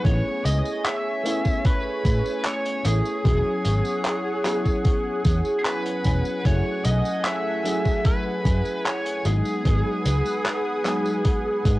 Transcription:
Already playing: analog synth pad G#5
0.04 fingered electric bass A1, fm electric piano A3 B3 C#4 E4 G#4, analog synth pad C#5, lead electric guitar C#5, kick, closed hi-hat, tambourine
0.45 fingered electric bass C#2, lead electric guitar D#5, closed hi-hat, tambourine
0.65 tambourine
0.85 lead electric guitar E5, clap, closed hi-hat, tambourine
1.23 fm electric piano A3 B3 C#4 E4 G#4, closed hi-hat, tambourine
1.45 kick, tambourine
1.65 lead electric guitar B4, kick, closed hi-hat, tambourine
2.05 fingered electric bass A2, kick, closed hi-hat, tambourine
2.26 tambourine
2.45 lead electric guitar C#5, clap, closed hi-hat, tambourine
2.66 closed hi-hat
2.84 fingered electric bass A1, fm electric piano A3 B3 C#4 E4 G#4, lead electric guitar G#4, closed hi-hat, tambourine
3.05 tambourine
3.24 fingered electric bass E1, fm electric piano F#3 B3 C#4 E4 G#4, analog synth pad C#5 F#5, kick, closed hi-hat, tambourine
3.65 fingered electric bass G#1, closed hi-hat, tambourine
3.85 tambourine
4.04 clap, closed hi-hat, tambourine
4.44 fm electric piano F#3 B3 C#4 E4 G#4, clap, closed hi-hat, tambourine
4.66 kick, tambourine
4.85 kick, closed hi-hat, tambourine
5.25 fingered electric bass E2, kick, closed hi-hat, tambourine
5.45 tambourine
5.65 lead electric guitar B4, clap, closed hi-hat, tambourine
5.86 closed hi-hat
6.04 fingered electric bass E1, fm electric piano F#3 B3 C#4 E4 G#4, kick, closed hi-hat, tambourine
6.25 tambourine
6.43 fingered electric bass F#1, fm electric piano F#3 A3 C#4 E4 G#4, analog synth pad A3, lead electric guitar C#5, kick, closed hi-hat, tambourine
6.85 fingered electric bass B1, lead electric guitar D#5, closed hi-hat, tambourine
7.05 tambourine
7.25 lead electric guitar E5, clap, closed hi-hat, tambourine
7.64 fm electric piano F#3 A3 C#4 E4 G#4, closed hi-hat, tambourine
7.85 kick, tambourine
8.05 lead electric guitar B4, kick, closed hi-hat, tambourine
8.45 fingered electric bass F#2, kick, closed hi-hat, tambourine
8.65 tambourine
8.85 lead electric guitar C#5, clap, closed hi-hat, tambourine
9.06 closed hi-hat
9.25 fingered electric bass G#1, fm electric piano F#3 G#3 B3 D#4 G#4, lead electric guitar G#4, analog synth pad B4 F#5 D#6, closed hi-hat, tambourine
9.45 tambourine
9.64 fingered electric bass G#1, fm electric piano F#3 G#3 B3 D#4 G#4, kick, closed hi-hat, tambourine
10.05 fingered electric bass C#2, closed hi-hat, tambourine
10.25 tambourine
10.45 clap, closed hi-hat, tambourine
10.84 fm electric piano F#3 G#3 B3 D#4 G#4, clap, closed hi-hat, tambourine
11.06 tambourine
11.25 kick, closed hi-hat, tambourine
11.65 fingered electric bass G#2, kick, closed hi-hat, tambourine

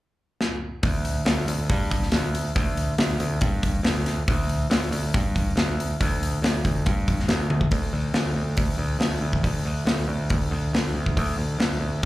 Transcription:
0.41 snare
0.83 picked electric bass D2, kick, open hi-hat
1.05 open hi-hat
1.25 picked electric bass D2, snare, open hi-hat
1.48 picked electric bass D2, open hi-hat
1.70 picked electric bass G2, kick, open hi-hat
1.91 kick, open hi-hat
2.02 snare
2.12 picked electric bass D2, snare, open hi-hat
2.35 open hi-hat
2.56 picked electric bass D2, kick, open hi-hat
2.77 open hi-hat
2.98 picked electric bass D2, snare, open hi-hat
3.19 picked electric bass D2, open hi-hat
3.41 picked electric bass G2, kick, open hi-hat
3.63 kick, open hi-hat
3.83 picked electric bass D2, snare, open hi-hat
4.06 snare, open hi-hat
4.28 picked electric bass D2, kick, open hi-hat
4.49 open hi-hat
4.70 picked electric bass D2, snare, open hi-hat
4.91 picked electric bass D2, open hi-hat
5.14 picked electric bass G2, kick, open hi-hat
5.36 kick, open hi-hat
5.56 picked electric bass D2, snare, open hi-hat
5.80 open hi-hat
6.00 picked electric bass D2, kick, open hi-hat
6.23 open hi-hat
6.42 picked electric bass D2, snare, open hi-hat
6.65 picked electric bass D2, kick, open hi-hat
6.86 picked electric bass G2, kick, open hi-hat
7.08 kick, open hi-hat
7.19 snare
7.28 picked electric bass D2, snare, open hi-hat
7.50 high tom
7.61 kick
7.71 picked electric bass D2, kick, open hi-hat
7.93 picked electric bass D2
8.14 picked electric bass D2, snare, open hi-hat
8.36 picked electric bass D2
8.57 picked electric bass D2, kick, open hi-hat
8.78 picked electric bass D2
8.99 picked electric bass D2, snare, open hi-hat
9.21 picked electric bass D2
9.33 kick
9.43 picked electric bass D2, kick, open hi-hat
9.65 picked electric bass D2
9.85 picked electric bass D2, snare, open hi-hat
10.08 picked electric bass D2
10.30 picked electric bass D2, kick, open hi-hat
10.51 picked electric bass D2
10.73 picked electric bass D2, snare, open hi-hat
10.94 picked electric bass D2
11.06 kick
11.17 picked electric bass D2, kick, open hi-hat
11.38 picked electric bass D2
11.59 picked electric bass D2, snare, open hi-hat
11.80 picked electric bass D2

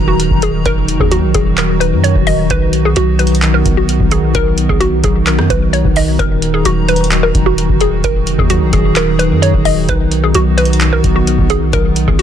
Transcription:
Already playing: 808-style bass D#1, tine electric piano D#3 F#3, analog synth pad D#3 D#4 F#4 A#5
0.08 synth pluck F#4
0.20 closed hi-hat
0.31 808-style bass D#1, kick
0.42 tine electric piano D#3, synth pluck G#4, closed hi-hat
0.65 808-style bass D#1, tine electric piano D#3, synth pluck A#4, kick, closed hi-hat
0.88 808-style bass F1, tine electric piano D#3, closed hi-hat
1.00 808-style bass D#2, synth pluck G#4, kick
1.11 tine electric piano F#3, synth pluck F#4, closed hi-hat
1.23 808-style bass A#1
1.34 808-style bass D#1, synth pluck G#4, kick, closed hi-hat
1.58 synth pluck A#4, clap, closed hi-hat
1.80 tine electric piano D#3, synth pluck B4, closed hi-hat
1.92 808-style bass F#2
2.04 synth pluck C#5, closed hi-hat
2.15 808-style bass D#1, kick
2.27 tine electric piano D#3, synth pluck D#5, open hi-hat
2.50 808-style bass B1, tine electric piano D#3, analog synth pad B3 D#4, synth pluck B4, kick, closed hi-hat
2.73 tine electric piano D#3, closed hi-hat
2.85 synth pluck G#4
2.96 808-style bass B1, tine electric piano F#3, synth pluck F#4, closed hi-hat
3.19 synth pluck B4, closed hi-hat
3.27 closed hi-hat
3.35 closed hi-hat
3.42 tine electric piano D#3, clap, closed hi-hat
3.54 synth pluck A#4
3.65 808-style bass B1, tine electric piano D#3, kick, closed hi-hat
3.77 synth pluck F#4
3.89 closed hi-hat
4.00 808-style bass B1, kick
4.11 tine electric piano D#3, synth pluck G#4, closed hi-hat
4.34 808-style bass B1, tine electric piano D#3, synth pluck A#4, kick, closed hi-hat
4.57 tine electric piano D#3, closed hi-hat
4.69 808-style bass B1, synth pluck G#4, kick
4.80 tine electric piano F#3, synth pluck F#4, closed hi-hat
5.04 808-style bass B1, synth pluck G#4, kick, closed hi-hat
5.27 tine electric piano D#3, synth pluck A#4, clap, closed hi-hat
5.38 808-style bass F#2, cross-stick
5.50 808-style bass B1, synth pluck B4, kick, closed hi-hat
5.73 synth pluck C#5, closed hi-hat
5.85 808-style bass B1, kick
5.96 tine electric piano D#3, synth pluck D#5, open hi-hat
6.19 808-style bass D#1, tine electric piano D#3, analog synth pad D#3 F#4 A#5, synth pluck A#4, kick, closed hi-hat
6.42 tine electric piano D#3, closed hi-hat
6.54 synth pluck G#4
6.65 808-style bass D#1, tine electric piano F#3, synth pluck F#4, closed hi-hat
6.89 synth pluck B4, closed hi-hat
6.96 closed hi-hat
7.04 closed hi-hat
7.11 tine electric piano D#3, clap, closed hi-hat
7.23 synth pluck A#4
7.35 808-style bass D#1, tine electric piano D#3, kick, closed hi-hat
7.46 synth pluck F#4
7.58 closed hi-hat
7.69 808-style bass D#1, kick
7.81 tine electric piano D#3, synth pluck G#4, closed hi-hat
8.04 808-style bass D#1, tine electric piano D#3, analog synth pad G#4, synth pluck A#4, kick, closed hi-hat
8.27 808-style bass F1, tine electric piano D#3, closed hi-hat
8.39 808-style bass D#2, synth pluck G#4, kick
8.50 tine electric piano F#3, synth pluck F#4, closed hi-hat
8.62 808-style bass A#1
8.73 808-style bass D#1, synth pluck G#4, kick, closed hi-hat
8.96 tine electric piano D#3, synth pluck A#4, clap, closed hi-hat
9.19 tine electric piano D#3, synth pluck B4, closed hi-hat
9.31 808-style bass F#2
9.42 synth pluck C#5, closed hi-hat
9.54 808-style bass D#1, kick
9.65 tine electric piano D#3, synth pluck D#5, open hi-hat
9.88 808-style bass B1, tine electric piano D#3, analog synth pad B3 F#4, synth pluck B4, kick, closed hi-hat
10.12 tine electric piano D#3, closed hi-hat
10.24 synth pluck G#4
10.35 808-style bass B1, tine electric piano F#3, synth pluck F#4, closed hi-hat
10.58 synth pluck B4, closed hi-hat
10.65 closed hi-hat
10.73 closed hi-hat
10.81 tine electric piano D#3, clap, closed hi-hat
10.93 synth pluck A#4
11.04 808-style bass B1, tine electric piano D#3, kick, closed hi-hat
11.16 synth pluck F#4
11.27 closed hi-hat
11.39 808-style bass B1, kick
11.50 tine electric piano D#3, synth pluck G#4, closed hi-hat
11.73 808-style bass B1, tine electric piano D#3, analog synth pad F4, synth pluck A#4, kick, closed hi-hat
11.96 tine electric piano D#3, closed hi-hat
12.08 808-style bass B1, synth pluck G#4, kick
12.19 synth pluck F#4

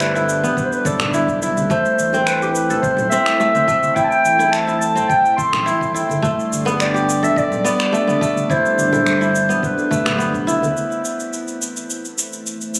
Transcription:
Already playing: sub bass G1, analog synth pad G3 D4 A4 D5, kora A3 B3 E4
0.00 clarinet B4, finger snap, shaker
0.15 kora E4, shaker
0.29 shaker
0.43 sub bass B1, kora B3, shaker
0.57 clarinet B4, kick, shaker
0.65 clarinet C5
0.72 sub bass D1, clarinet B4, shaker
0.85 sub bass G1, kora A4, clarinet D5, kick, shaker
1.00 finger snap, high bongo, low conga, shaker
1.14 kora E4, shaker
1.28 sub bass B1, kick, shaker
1.42 kora E4, high conga, shaker
1.57 sub bass D2, high bongo, high conga, shaker
1.70 sub bass A1, analog synth pad A3 E4 A4 C5, kora A3, clarinet C5, kick, shaker
1.85 shaker
1.98 sub bass A1, shaker
2.13 kora C4, high bongo, shaker
2.26 clarinet B4, finger snap, shaker
2.42 kora G4, shaker
2.54 clarinet B4, shaker
2.70 sub bass C2, kora A4, shaker
2.81 clarinet C5, kick, shaker
2.97 low conga, shaker
3.09 kora C4, clarinet E5, shaker
3.26 finger snap, shaker
3.40 kora A3, shaker
3.55 kora C4, high conga, shaker
3.68 sub bass E1, kora A3, kick, shaker
3.83 high conga, shaker
3.95 sub bass A1, kora E4, clarinet G5, kick, shaker
4.04 clarinet A5
4.09 clarinet G5, shaker
4.24 sub bass A1, shaker
4.39 kora E4, high bongo, shaker
4.51 clarinet A5, finger snap, shaker
4.67 kora E4, shaker
4.80 clarinet A5, shaker
4.95 sub bass C2, kora C4, shaker
5.09 clarinet G5, kick, shaker
5.25 sub bass E1, shaker
5.37 kora A4, clarinet C6, kick, shaker
5.53 sub bass A1, finger snap, high bongo, low conga, shaker
5.66 kora E4, shaker
5.81 kick, shaker
5.94 kora E4, shaker
6.09 sub bass G1, high bongo, high conga, shaker
6.22 sub bass G1, analog synth pad G3 D4 A4 D5, kora A3, kick, shaker
6.40 shaker
6.51 sub bass G1, shaker
6.65 kora B3, high bongo, shaker
6.80 clarinet D5, finger snap, shaker
6.94 kora G4, shaker
7.10 shaker
7.23 sub bass B1, kora A4, clarinet E5, shaker
7.36 clarinet D5, kick, shaker
7.52 low conga, shaker
7.64 kora B3, clarinet D5, shaker
7.80 finger snap, shaker
7.93 kora A3, shaker
8.07 kora B3, high conga, shaker
8.21 sub bass D1, kora A3, kick, shaker
8.36 high conga, shaker
8.50 sub bass G1, kora E4, clarinet C5, kick, shaker
8.66 shaker
8.78 sub bass G1, high conga, shaker
8.93 kora E4, high bongo, low conga, shaker
9.06 finger snap, shaker
9.21 kora E4, shaker
9.36 shaker
9.49 sub bass B1, kora B3, shaker
9.63 clarinet B4, kick, shaker
9.78 sub bass D1, high bongo, shaker
9.91 sub bass G1, kora A3, kick, shaker
10.05 kora B3, finger snap, high bongo, low conga, shaker
10.18 kora B3, shaker
10.34 sub bass B1, kick, shaker
10.47 kora E4, high conga, shaker
10.62 sub bass D2, high bongo, high conga, shaker
10.76 analog synth pad A3 E4 B4 C5, shaker
10.92 shaker
11.05 shaker
11.20 shaker
11.33 shaker
11.48 shaker
11.62 shaker
11.77 shaker
11.90 shaker
12.05 shaker
12.18 shaker
12.33 shaker
12.47 shaker
12.61 shaker
12.75 shaker

